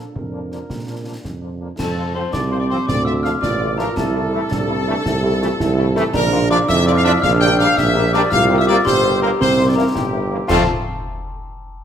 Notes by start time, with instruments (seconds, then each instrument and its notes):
Already playing: euphonium D4, trumpet section A4
0.15 tuba F2, trumpet section A#4, concert bass drum
0.32 french horn section F3 A#3 D4
0.51 french horn section F3 A#3 D4, snare
0.70 tuba A#2, concert bass drum, snare
0.87 french horn section F3 A#3 D4
1.06 french horn section F3 A#3 D4
1.24 tuba F2, concert bass drum, snare
1.42 french horn section F3 A#3 D4
1.60 french horn section F3 A#3 D4
1.78 tuba F2, euphonium C4, flute section A4, trumpet section A4, glockenspiel A5, concert bass drum, snare, crash
1.97 french horn section F3 C4 F4
2.15 french horn section F3 C4 F4, trombone section F3 C4, trumpet section C5, flute section C5, glockenspiel C6
2.32 tuba C2, trumpet section D5, flute section D5, glockenspiel D6, concert bass drum, snare
2.51 french horn section F3 C4 F4, trumpet section C5, flute section C5, glockenspiel C6
2.60 trumpet section D5, flute section D5, glockenspiel D6
2.69 french horn section F3 C4 F4, trombone section F3 C4, trumpet section C5, flute section C5, glockenspiel C6
2.87 tuba D2, trumpet section D5, flute section D5, glockenspiel D6, concert bass drum, snare
3.05 french horn section A3 D4 F4, trumpet section E5, flute section E5, glockenspiel E6
3.23 trombone section F3 A3, french horn section A3 D4 F4, trumpet section F5, flute section F5, glockenspiel F6, snare
3.41 tuba A1, euphonium F4, trumpet section D5, flute section D5, glockenspiel D6, concert bass drum, snare
3.60 french horn section A3 D4 F4
3.78 trombone section F3 A3, french horn section A3 D4 F4, flute section A#4, trumpet section A#4, glockenspiel A#5, snare
3.96 tuba C2, euphonium E4, flute section A4, trumpet section A4, glockenspiel A5, concert bass drum, snare, crash
4.14 french horn section A3 E4
4.32 trombone section E3 A3, french horn section A3 E4
4.51 tuba C2, euphonium D4, concert bass drum, snare
4.68 french horn section A3 E4, euphonium C4
4.87 trombone section E3 A3, french horn section A3 E4, euphonium D4
5.05 tuba C2, euphonium E4, concert bass drum, snare
5.23 french horn section A3 E4, euphonium G4
5.41 trombone section E3 A3, french horn section A3 E4, euphonium F4, snare
5.59 tuba C2, euphonium E4, concert bass drum, snare
5.78 french horn section A3 E4
5.96 trombone section E3 A3, french horn section A3 E4, snare
6.14 tuba A#1, euphonium D4, flute section A#4, trumpet section A#4, glockenspiel A#5, concert bass drum, snare, crash
6.32 french horn section F3 D4 F4
6.50 french horn section F3 D4 F4, trombone section F3 D4, trumpet section D5, flute section D5, glockenspiel D6
6.68 tuba F2, euphonium E4, trumpet section E5, flute section E5, glockenspiel E6, concert bass drum, snare
6.86 french horn section F3 D4 F4, trumpet section D5, flute section D5, glockenspiel D6
6.95 trumpet section F5, flute section F5, glockenspiel F6
7.04 trombone section F3 D4, french horn section F3 D4 F4, trumpet section E5, flute section E5, glockenspiel E6
7.22 tuba A#1, euphonium D4, trumpet section F5, flute section F5, glockenspiel F6, concert bass drum, snare
7.40 french horn section A#3 D4 G4, trumpet section G5, flute section G5, glockenspiel G6
7.59 trombone section G3 D4, french horn section A#3 D4 G4, flute section F5, trumpet section F5, glockenspiel F6, snare
7.76 tuba A#1, flute section E5, trumpet section E5, glockenspiel E6, concert bass drum, snare
7.95 french horn section A#3 D4 G4
8.13 trombone section G3 D4, french horn section A#3 D4 G4, trumpet section D5, flute section D5, glockenspiel D6, snare
8.30 tuba C2, euphonium F4, trumpet section F5, flute section F5, glockenspiel F6, concert bass drum, snare, crash
8.49 french horn section A#3 C4 G4
8.58 trumpet section E5, flute section E5, glockenspiel E6
8.67 trombone section G3 A#3, french horn section A#3 C4 G4, trumpet section D5, flute section D5, glockenspiel D6
8.85 tuba G1, euphonium G4, trumpet section C5, flute section C5, glockenspiel C6, concert bass drum, snare
9.03 french horn section A#3 C4 G4
9.21 trombone section G3 A#3, french horn section A#3 C4 G4, trumpet section A#4, flute section A#4, glockenspiel A#5
9.40 tuba C2, euphonium C4, trumpet section C5, flute section C5, glockenspiel C6, concert bass drum, snare
9.57 french horn section A#3 C4 E4
9.67 trumpet section D5, flute section D5, glockenspiel D6
9.76 trombone section E3 A#3, french horn section A#3 C4 E4, flute section A#4, trumpet section A#4, glockenspiel A#5
9.95 tuba G1, euphonium E4, trumpet section G4, flute section G4, glockenspiel G5, concert bass drum, snare
10.12 french horn section A#3 C4 E4
10.30 trombone section E3 A#3, french horn section A#3 C4 E4
10.48 tuba F2, trombone section F3 C4, french horn section A3 C4 F4, trumpet section A4, glockenspiel A5, flute section A5, concert bass drum, snare, crash